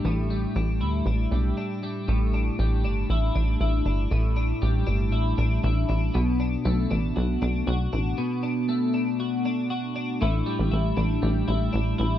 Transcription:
<<
  \new Staff \with { instrumentName = "Clean electric guitar" } { \time 4/4 \key a \mixolydian \tempo 4 = 118 <a, g d' e'>8 g8 d'8 e'8 d'8 g8 d'8 g8 | a,8 d'8 g8 d'8 e'8 d'8 e'8 d'8 | a,8 d'8 g8 d'8 e'8 d'8 e'8 d'8 | b,8 d'8 a8 d'8 fis'8 d'8 fis'8 d'8 |
b,8 d'8 a8 d'8 fis'8 d'8 fis'8 d'8 | <a, e'>8 g8 e'8 d'8 g8 e'8 d'8 e'8 | }
  \new Staff \with { instrumentName = "Analog synth bass" } { \clef bass \time 4/4 \key a \mixolydian a,,4 a,,8 d,8 a,,8 b,,8 r4 | a,,4 a,,8 g,,8 a,,8 a,,8 a,,8 g,,8 | a,,4 a,,8 g,,8 a,,8 a,,8 a,,8 a,,8 | b,,4 b,,8 a,,8 b,,8 b,,8 b,,8 a,,8 |
r1 | a,,8 r16 a,,16 a,,8 a,,8 a,,8 a,,8 a,,8 a,,8 | }
>>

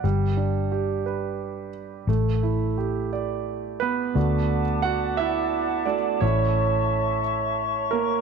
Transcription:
<<
  \new Staff \with { instrumentName = "Flute section" } { \time 6/8 \key d \major \tempo 4. = 58 << { r2. | r2. | <d'' fis'' d'''>2. | <cis'' e'' cis'''>2. | } \\ { r2. | r2. | a''2.~ | a''2. | } >> }
  \new Staff \with { instrumentName = "Grand piano" } { \time 6/8 \key d \major << { r2. | r2 r8 <b b'>8~ | <b b'>4 <fis' fis''>8 <e' e''>4 d''8 | cis''4. r4 <ais ais'>8 | } \\ { g8 d'8 g'8 b'4. | a8 e'8 g'8 d''4. | <a d' fis'>8 r2 <a d' fis'>8 | <a cis' e'>4. r4. | } >> }
  \new Staff \with { instrumentName = "Fingered electric bass" } { \clef bass \time 6/8 \key d \major g,,2. | a,,2. | d,2. | a,,2. | }
>>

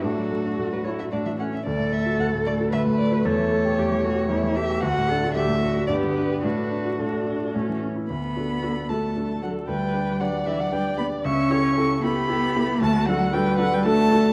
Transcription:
<<
  \new Staff \with { instrumentName = "Violin" } { \time 3/4 \key d \major \tempo 4 = 114 a'4~ a'16 b'16 cis''16 e''16 d''16 e''16 fis''16 e''16 | d''8 e''8 fis''8 d''8 e''8 d''16 b'16 | cis''2~ cis''8 e''8 | fis''4 e''4 d''8 b'8 |
b'4 a'4. r8 | b''4. a''4 fis''8 | g''4 fis''8 e''16 fis''16 g''8 b''8 | cis'''4. b''4. |
a''8 fis''8 g''8 fis''16 g''16 a''4 | }
  \new Staff \with { instrumentName = "Viola" } { \time 3/4 \key d \major d'4 fis'8 e'8 d'8 cis'8 | a2.~ | a2. | a2 b4 |
d'4 d'4 cis'8 r8 | r4 fis'8 a'4. | b'4 d''2 | e''8 cis''8 a'8 g'4. |
fis'4 b'4 a'4 | }
  \new Staff \with { instrumentName = "Grand piano" } { \time 3/4 \key d \major a,16 fis16 a16 d'16 a,16 fis16 a16 d'16 a,16 e16 a16 cis'16 | d,16 a,16 a16 fis'16 d,16 a,16 a16 fis'16 d,16 a,16 a16 fis'16 | e,16 e16 a16 g'16 e,16 e16 a16 g'16 e,16 e16 a16 g'16 | d,16 a,16 d'16 fis'16 d,16 a,16 d'16 fis'16 g,16 d16 d'16 g'16 |
a,16 a16 d'16 fis'16 a,16 a16 d'16 fis'16 a,16 e16 cis'16 e'16 | d,8 <d' fis' a'>8 <d' fis' a'>8 <d' fis' a'>8 <d' fis' a'>8 <d' fis' a'>8 | d,8 <d' g' b'>8 <d' g' b'>8 <d' g' b'>8 <d' g' b'>8 <d' g' b'>8 | cis,8 <e' g' a'>8 <e' g' a'>8 <e' g' a'>8 <e' g' a'>8 <e' g' a'>8 |
d,8 <d' fis' a'>8 <d' fis' a'>8 <d' fis' a'>8 <d' fis' a'>8 <d' fis' a'>8 | }
  \new Staff \with { instrumentName = "Cello" } { \time 3/4 \key d \major fis'2~ fis'8 r8 | a'2 b'4 | a'4 g'8 fis'8 e'8 g'8 | fis'8 a'8 g'8 fis'8 g'4 |
fis'2~ fis'8 r8 | b4. a4 fis8 | g4 fis8 e16 fis16 g8 b8 | cis'4. b4. |
a8 fis8 g8 fis16 g16 a4 | }
>>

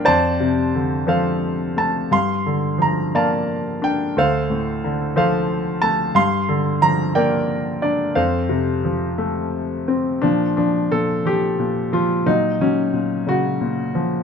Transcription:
<<
  \new Staff \with { instrumentName = "Grand piano" } { \time 6/8 \key bes \major \tempo 4. = 59 << { a''4. f''4 a''8 | c'''4 bes''8 a''4 g''8 | f''4. f''4 a''8 | c'''4 bes''8 g''4 d''8 |
f''2~ f''8 r8 | d'8 d'8 a'8 g'4 f'8 | ees'8 des'4 ges'4 r8 | } \\ { <c'' d''>4. <a' c''>4. | f''4. <d'' f''>4. | <a' c''>4. <a' c''>4. | f''4. <bes' d''>4. |
<a' c''>2~ <a' c''>8 r8 | f4. r4. | ges4. r4. | } >> }
  \new Staff \with { instrumentName = "Grand piano" } { \clef bass \time 6/8 \key bes \major f,8 c8 d8 f4 a8 | g,8 d8 f8 bes4 d'8 | d,8 a,8 d8 f4 a8 | g,8 d8 f8 bes4 d'8 |
f,8 c8 f8 a4 c'8 | bes,8 f8 bes,8 f8 bes,8 f8 | bes,8 ges8 bes,8 des8 bes,8 f8 | }
>>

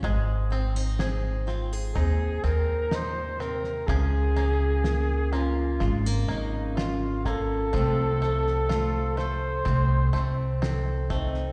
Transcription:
<<
  \new Staff \with { instrumentName = "Flugelhorn" } { \time 4/4 \key des \major \tempo 4 = 62 r2 aes'8 bes'8 c''8 bes'8 | aes'4. f'8 r8 ees'8 f'8 a'8~ | a'4. c''4. r8 ees'8 | }
  \new Staff \with { instrumentName = "Five-string banjo" } { \time 4/4 \key des \major <aes aes'>8 c'8 aes'8 c'8 ees'8 c'8 ees'8 c'8 | <f aes'>8 bes4 bes8 f'8 bes8 f'8 bes8 | <f f'>8 a8 f'8 a8 c'8 a8 c'8 a8 | }
  \new Staff \with { instrumentName = "Steel-string acoustic guitar" } { \time 4/4 \key des \major << { r8 c'16 ees'16 c'8 f'16 aes'16 c'8 ees'4. | r8 des'8 bes8 des'8 aes16 bes16 des'8 des'8 des'8 | <f a c'>8 c'8 a8 a'8 a8 c'8 a'8 c'8 | } \\ { aes,2. bes,8 c8 | des1 | c1 | } >> }
  \new Staff \with { instrumentName = "Upright bass" } { \clef bass \time 4/4 \key des \major aes,,2 ees,8 ees,4. | des,2 aes,,8 aes,,4. | c,2 c,8 c,4. | }
  \new DrumStaff \with { instrumentName = "Drums" } \drummode { \time 4/4 <bd sn>8 sn16 sn16 sn8 sn8 <bd sn>8 sn8 sn8 sn16 sn16 | <bd sn>8 sn8 sn8 sn8 <bd sn>8 sn8 sn8 <bd sn>8 | <bd sn>8 sn16 sn16 sn8 sn8 <bd sn>8 sn8 sn8 <bd sn>16 sn16 | }
>>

